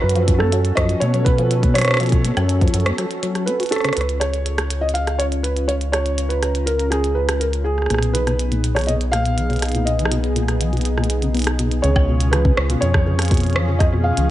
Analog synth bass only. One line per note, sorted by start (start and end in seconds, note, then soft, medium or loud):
0.03 0.72 F#2 medium
0.77 0.95 F#2 loud
1.02 2.32 B2 medium
2.37 2.69 F#2 medium
2.74 2.92 F#2 loud
3.97 7.88 C#2 medium
7.90 11.81 B1 medium
11.84 12.52 C#2 loud
12.57 12.76 C#2 loud
12.82 14.12 F2 medium
14.17 14.30 C#2 loud